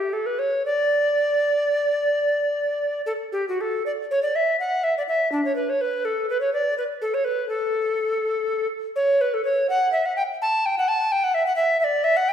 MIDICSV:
0, 0, Header, 1, 2, 480
1, 0, Start_track
1, 0, Key_signature, 2, "major"
1, 0, Tempo, 530035
1, 600, Time_signature, 12, 3, 24, 8
1, 3489, Tempo, 500835
1, 3969, Tempo, 483481
1, 9249, Tempo, 473186
1, 11943, End_track
2, 0, Start_track
2, 0, Title_t, "Recorder"
2, 0, Program_c, 0, 74
2, 0, Note_on_c, 0, 67, 60
2, 119, Note_on_c, 0, 69, 59
2, 133, Note_off_c, 0, 67, 0
2, 237, Note_on_c, 0, 71, 55
2, 251, Note_off_c, 0, 69, 0
2, 353, Note_on_c, 0, 73, 58
2, 367, Note_off_c, 0, 71, 0
2, 588, Note_off_c, 0, 73, 0
2, 593, Note_on_c, 0, 74, 62
2, 2730, Note_off_c, 0, 74, 0
2, 2773, Note_on_c, 0, 69, 51
2, 2828, Note_off_c, 0, 69, 0
2, 3010, Note_on_c, 0, 67, 51
2, 3128, Note_off_c, 0, 67, 0
2, 3156, Note_on_c, 0, 66, 47
2, 3268, Note_on_c, 0, 69, 50
2, 3282, Note_off_c, 0, 66, 0
2, 3488, Note_off_c, 0, 69, 0
2, 3494, Note_on_c, 0, 74, 60
2, 3552, Note_off_c, 0, 74, 0
2, 3736, Note_on_c, 0, 73, 60
2, 3842, Note_off_c, 0, 73, 0
2, 3848, Note_on_c, 0, 74, 61
2, 3972, Note_on_c, 0, 76, 63
2, 3987, Note_off_c, 0, 74, 0
2, 4206, Note_off_c, 0, 76, 0
2, 4212, Note_on_c, 0, 78, 61
2, 4448, Note_on_c, 0, 76, 57
2, 4463, Note_off_c, 0, 78, 0
2, 4572, Note_off_c, 0, 76, 0
2, 4587, Note_on_c, 0, 74, 58
2, 4639, Note_off_c, 0, 74, 0
2, 4690, Note_on_c, 0, 76, 67
2, 4922, Note_off_c, 0, 76, 0
2, 4928, Note_on_c, 0, 62, 74
2, 5048, Note_off_c, 0, 62, 0
2, 5057, Note_on_c, 0, 73, 55
2, 5158, Note_off_c, 0, 73, 0
2, 5164, Note_on_c, 0, 71, 58
2, 5302, Note_on_c, 0, 73, 61
2, 5317, Note_off_c, 0, 71, 0
2, 5417, Note_on_c, 0, 71, 62
2, 5432, Note_off_c, 0, 73, 0
2, 5654, Note_on_c, 0, 69, 58
2, 5669, Note_off_c, 0, 71, 0
2, 5891, Note_off_c, 0, 69, 0
2, 5897, Note_on_c, 0, 71, 67
2, 6003, Note_off_c, 0, 71, 0
2, 6009, Note_on_c, 0, 73, 58
2, 6127, Note_off_c, 0, 73, 0
2, 6133, Note_on_c, 0, 74, 59
2, 6371, Note_off_c, 0, 74, 0
2, 6377, Note_on_c, 0, 71, 65
2, 6436, Note_off_c, 0, 71, 0
2, 6612, Note_on_c, 0, 69, 57
2, 6737, Note_on_c, 0, 73, 61
2, 6752, Note_off_c, 0, 69, 0
2, 6840, Note_on_c, 0, 71, 68
2, 6855, Note_off_c, 0, 73, 0
2, 7075, Note_off_c, 0, 71, 0
2, 7081, Note_on_c, 0, 69, 73
2, 8253, Note_off_c, 0, 69, 0
2, 8541, Note_on_c, 0, 73, 73
2, 8792, Note_on_c, 0, 71, 68
2, 8807, Note_off_c, 0, 73, 0
2, 8919, Note_on_c, 0, 69, 60
2, 8934, Note_off_c, 0, 71, 0
2, 9021, Note_off_c, 0, 69, 0
2, 9027, Note_on_c, 0, 73, 64
2, 9251, Note_off_c, 0, 73, 0
2, 9272, Note_on_c, 0, 78, 77
2, 9494, Note_off_c, 0, 78, 0
2, 9505, Note_on_c, 0, 76, 74
2, 9639, Note_on_c, 0, 78, 67
2, 9654, Note_off_c, 0, 76, 0
2, 9743, Note_off_c, 0, 78, 0
2, 9749, Note_on_c, 0, 79, 73
2, 9810, Note_off_c, 0, 79, 0
2, 10006, Note_on_c, 0, 81, 72
2, 10249, Note_on_c, 0, 79, 74
2, 10265, Note_off_c, 0, 81, 0
2, 10351, Note_off_c, 0, 79, 0
2, 10373, Note_on_c, 0, 78, 69
2, 10477, Note_on_c, 0, 81, 82
2, 10492, Note_off_c, 0, 78, 0
2, 10717, Note_on_c, 0, 79, 78
2, 10733, Note_off_c, 0, 81, 0
2, 10838, Note_on_c, 0, 78, 71
2, 10853, Note_off_c, 0, 79, 0
2, 10945, Note_on_c, 0, 76, 71
2, 10961, Note_off_c, 0, 78, 0
2, 11059, Note_off_c, 0, 76, 0
2, 11070, Note_on_c, 0, 78, 68
2, 11160, Note_off_c, 0, 78, 0
2, 11166, Note_on_c, 0, 76, 80
2, 11400, Note_off_c, 0, 76, 0
2, 11412, Note_on_c, 0, 76, 69
2, 11451, Note_on_c, 0, 74, 75
2, 11461, Note_off_c, 0, 76, 0
2, 11653, Note_on_c, 0, 76, 84
2, 11668, Note_off_c, 0, 74, 0
2, 11780, Note_on_c, 0, 78, 73
2, 11795, Note_off_c, 0, 76, 0
2, 11901, Note_on_c, 0, 79, 81
2, 11916, Note_off_c, 0, 78, 0
2, 11943, Note_off_c, 0, 79, 0
2, 11943, End_track
0, 0, End_of_file